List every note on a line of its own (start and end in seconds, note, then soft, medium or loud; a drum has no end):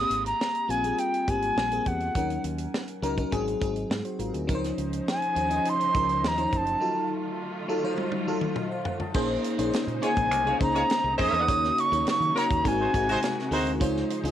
0.00 0.39 A#3 medium
0.00 0.39 C4 medium
0.00 0.39 G4 medium
0.00 0.39 G#4 medium
0.00 0.26 D#6 loud
0.10 0.32 G#1 medium
0.10 closed hi-hat medium
0.26 0.72 A#5 loud
0.26 closed hi-hat medium
0.41 snare loud
0.55 closed hi-hat soft
0.68 0.91 A#1 medium
0.68 0.78 G3 medium
0.68 0.78 A#3 medium
0.68 0.79 C4 medium
0.68 0.79 F4 medium
0.68 1.01 G#5 medium
0.68 closed hi-hat medium
0.83 1.12 G3 medium
0.83 1.12 A#3 medium
0.83 1.13 C4 medium
0.83 1.13 G#4 medium
0.83 closed hi-hat soft
0.98 1.22 G5 medium
0.98 closed hi-hat medium
1.14 closed hi-hat soft
1.22 1.31 G5 medium
1.28 1.50 G#1 medium
1.28 1.56 G3 medium
1.28 1.56 A#3 medium
1.28 1.57 C4 medium
1.28 1.57 G4 medium
1.28 1.89 G#5 medium
1.28 kick medium
1.28 closed hi-hat medium
1.42 closed hi-hat medium
1.57 1.78 A#1 medium
1.57 snare loud
1.71 2.00 G3 medium
1.71 2.00 A#3 medium
1.71 2.01 C4 medium
1.71 2.01 G#4 medium
1.71 closed hi-hat soft
1.86 2.08 E2 medium
1.86 2.45 F#5 medium
1.86 kick medium
1.86 closed hi-hat medium
2.00 closed hi-hat soft
2.15 2.37 D#2 medium
2.15 2.72 F#3 medium
2.15 2.72 C#4 medium
2.15 2.73 D#4 medium
2.15 2.73 A#4 medium
2.15 kick loud
2.15 closed hi-hat loud
2.30 closed hi-hat soft
2.44 2.66 D#2 medium
2.44 closed hi-hat medium
2.58 closed hi-hat medium
2.74 snare loud
2.88 closed hi-hat soft
3.02 3.24 C#2 loud
3.02 3.12 F#3 medium
3.02 3.12 C#4 medium
3.02 3.13 D#4 medium
3.02 3.13 A#4 loud
3.02 closed hi-hat medium
3.17 3.30 F#3 medium
3.17 3.32 C#4 medium
3.17 3.31 D#4 medium
3.17 3.33 A#4 medium
3.17 kick medium
3.17 closed hi-hat medium
3.31 3.54 G#1 medium
3.31 3.55 F#3 loud
3.31 3.55 C4 medium
3.31 3.56 D#4 medium
3.31 3.56 G#4 loud
3.31 kick medium
3.31 closed hi-hat medium
3.48 closed hi-hat soft
3.60 3.83 G#1 medium
3.60 3.89 F#3 medium
3.60 3.89 C4 medium
3.60 3.90 D#4 medium
3.60 3.90 G#4 medium
3.60 kick loud
3.60 closed hi-hat medium
3.76 closed hi-hat soft
3.90 4.01 G#2 medium
3.90 snare loud
4.05 4.19 F#4 medium
4.05 4.19 C5 medium
4.05 closed hi-hat soft
4.19 4.30 G#1 medium
4.19 4.34 F4 medium
4.19 4.33 A#4 medium
4.19 closed hi-hat medium
4.34 4.45 D2 medium
4.34 4.47 D#4 soft
4.34 4.62 G#4 medium
4.34 closed hi-hat soft
4.47 4.70 C#2 medium
4.47 6.80 C#3 medium
4.47 5.05 F3 medium
4.47 6.80 F3 medium
4.47 5.05 C#4 medium
4.47 5.05 D#4 medium
4.47 6.80 D#4 medium
4.47 4.55 A#4 medium
4.47 6.80 C5 medium
4.47 kick loud
4.47 closed hi-hat medium
4.55 5.09 C5 loud
4.64 snare soft
4.64 closed hi-hat medium
4.78 5.00 C#2 medium
4.78 closed hi-hat medium
4.93 closed hi-hat medium
5.08 5.71 G#5 medium
5.08 snare loud
5.22 closed hi-hat medium
5.35 5.58 D#2 medium
5.35 5.45 F3 medium
5.35 5.45 C#4 medium
5.35 5.45 D#4 medium
5.35 5.46 C5 medium
5.35 closed hi-hat medium
5.49 5.79 F3 medium
5.49 5.79 C#4 medium
5.49 5.79 D#4 medium
5.49 5.79 D#5 medium
5.49 closed hi-hat medium
5.65 closed hi-hat medium
5.69 6.29 C6 loud
5.80 closed hi-hat soft
5.94 6.24 C#2 medium
5.94 6.23 F3 medium
5.94 6.23 C#4 medium
5.94 6.23 D#4 medium
5.94 6.23 A#4 medium
5.94 kick loud
5.94 closed hi-hat medium
6.09 closed hi-hat soft
6.24 6.46 D#2 medium
6.24 6.58 A#5 medium
6.24 snare loud
6.37 6.66 F3 medium
6.37 6.66 C#4 medium
6.37 6.67 D#4 medium
6.37 6.67 C5 medium
6.37 closed hi-hat medium
6.52 6.74 F#1 medium
6.52 kick medium
6.52 closed hi-hat medium
6.57 7.13 A5 medium
6.66 closed hi-hat soft
6.80 9.13 D#3 medium
6.80 7.38 F#3 medium
6.80 9.13 F#3 medium
6.80 9.13 A3 medium
6.80 7.38 D#4 medium
6.80 7.38 F4 medium
6.80 9.13 F4 medium
6.80 7.39 A4 medium
7.68 7.78 F#3 loud
7.68 7.79 D#4 medium
7.68 7.79 F4 medium
7.68 7.79 A4 loud
7.83 8.12 F#3 medium
7.83 8.12 D#4 medium
7.83 8.13 F4 medium
7.83 8.13 C5 loud
7.98 high tom soft
8.12 high tom medium
8.27 8.56 F#3 medium
8.27 8.56 D#4 medium
8.27 8.56 F4 medium
8.27 8.56 A4 loud
8.41 mid tom medium
8.56 8.71 A4 medium
8.56 8.71 D#5 medium
8.56 mid tom medium
8.71 8.86 C5 medium
8.71 8.85 F5 medium
8.85 9.00 C5 medium
8.85 9.00 F#5 medium
8.85 floor tom medium
9.00 9.29 D#5 medium
9.00 9.28 A5 medium
9.00 floor tom medium
9.14 9.36 A#1 loud
9.14 11.45 C#3 medium
9.14 11.45 G#3 medium
9.14 9.43 A#3 medium
9.14 9.43 C#4 medium
9.14 9.43 D#4 medium
9.14 12.61 D#4 medium
9.14 9.43 G#4 medium
9.14 11.46 C5 medium
9.14 9.44 C5 loud
9.14 kick loud
9.14 crash loud
9.44 closed hi-hat medium
9.58 9.70 A#1 loud
9.58 9.87 A#3 medium
9.58 9.87 C#4 medium
9.58 9.87 D#4 medium
9.58 9.87 G#4 medium
9.58 9.87 C5 loud
9.58 closed hi-hat medium
9.73 snare loud
9.73 closed hi-hat medium
9.87 9.98 A#2 medium
9.87 closed hi-hat soft
10.01 10.40 A#3 medium
10.01 10.40 C#4 medium
10.01 10.40 D#4 medium
10.01 10.11 F4 medium
10.01 10.40 G#4 medium
10.01 10.11 G#4 medium
10.01 10.40 C5 medium
10.01 10.11 C#5 medium
10.01 10.58 G#5 loud
10.01 closed hi-hat medium
10.17 10.31 A#1 medium
10.17 kick loud
10.17 closed hi-hat medium
10.31 10.53 C2 medium
10.31 closed hi-hat medium
10.46 10.59 F4 medium
10.46 10.59 G#4 medium
10.46 10.59 C#5 medium
10.46 closed hi-hat soft
10.59 10.82 C#2 medium
10.59 10.98 A#3 medium
10.59 10.98 C#4 medium
10.59 10.98 D#4 medium
10.59 10.99 G#4 medium
10.59 10.99 C5 medium
10.59 11.16 A#5 loud
10.59 kick loud
10.59 closed hi-hat medium
10.74 10.84 F4 medium
10.74 10.84 G#4 loud
10.74 10.84 C#5 loud
10.74 closed hi-hat soft
10.90 snare loud
10.90 closed hi-hat medium
11.04 11.15 C2 loud
11.18 11.30 F2 medium
11.18 11.37 A#3 medium
11.18 11.38 C#4 medium
11.18 11.38 D#4 medium
11.18 11.43 G#4 loud
11.18 11.38 G#4 medium
11.18 11.43 C5 loud
11.18 11.38 C#5 medium
11.18 11.43 D#5 loud
11.18 11.82 D#6 loud
11.18 kick medium
11.18 open hi-hat medium
11.33 11.48 E2 medium
11.33 closed hi-hat soft
11.48 11.70 D#2 loud
11.48 12.64 C#3 medium
11.48 12.64 F#3 medium
11.48 11.76 A#3 medium
11.48 13.79 A#3 medium
11.48 11.76 C#4 medium
11.48 11.77 D#4 medium
11.48 11.77 F#4 medium
11.48 11.77 C#5 medium
11.48 kick loud
11.48 closed hi-hat loud
11.65 snare soft
11.65 closed hi-hat soft
11.78 12.08 C#6 loud
11.78 closed hi-hat medium
11.92 12.03 D#2 medium
11.92 12.20 A#3 medium
11.92 12.20 C#4 medium
11.92 12.20 D#4 medium
11.92 12.20 F#4 medium
11.92 12.21 C#5 medium
11.92 closed hi-hat medium
12.06 12.40 C#6 loud
12.06 muted fingered electric bass stroke soft
12.06 snare loud
12.06 closed hi-hat medium
12.20 12.31 D#3 medium
12.20 closed hi-hat soft
12.35 12.64 A#3 medium
12.35 12.64 C#4 medium
12.35 12.64 D#4 medium
12.35 12.64 F#4 medium
12.35 12.45 F#4 medium
12.35 12.45 A#4 medium
12.35 12.45 C#5 loud
12.35 12.65 C#5 medium
12.35 12.69 A#5 medium
12.35 snare soft
12.35 closed hi-hat medium
12.50 12.61 D#2 medium
12.50 kick loud
12.50 closed hi-hat medium
12.64 12.86 G#1 loud
12.64 13.80 C3 medium
12.64 12.87 G#3 medium
12.64 13.80 G#3 medium
12.64 12.87 C4 medium
12.64 12.88 D#4 medium
12.64 12.88 F#4 medium
12.64 13.80 F#4 medium
12.64 12.88 A#4 medium
12.64 13.53 G#5 loud
12.64 kick medium
12.64 closed hi-hat medium
12.80 12.92 D#4 medium
12.80 12.92 F#4 medium
12.80 12.92 C5 medium
12.93 13.15 G#1 medium
12.93 13.31 G#3 medium
12.93 13.31 C4 medium
12.93 13.31 D#4 medium
12.93 13.31 F#4 medium
12.93 13.32 G#4 medium
12.93 kick medium
12.93 closed hi-hat medium
13.09 13.18 D#4 loud
13.09 13.18 F#4 loud
13.09 13.18 C5 loud
13.09 closed hi-hat medium
13.23 snare loud
13.23 closed hi-hat medium
13.39 snare soft
13.51 13.81 D2 medium
13.51 13.70 G#3 medium
13.51 13.70 C4 medium
13.51 13.70 D#4 medium
13.51 13.71 D#4 medium
13.51 13.71 F#4 medium
13.51 13.71 A#4 loud
13.51 13.71 C5 loud
13.51 open hi-hat medium
13.67 closed hi-hat soft
13.80 14.02 C#2 loud
13.80 14.31 C#3 medium
13.80 14.31 F3 medium
13.80 14.09 G#3 loud
13.80 14.09 C#4 medium
13.80 14.09 D#4 medium
13.80 14.31 D#4 medium
13.80 14.09 F4 medium
13.80 14.09 C5 loud
13.80 14.31 C5 medium
13.80 kick loud
13.80 closed hi-hat loud
13.97 snare soft
14.10 closed hi-hat medium
14.24 14.31 C#2 loud
14.24 14.31 G#3 medium
14.24 14.31 C#4 medium
14.24 14.31 D#4 medium
14.24 14.31 F4 medium
14.24 14.31 G#4 medium
14.24 closed hi-hat medium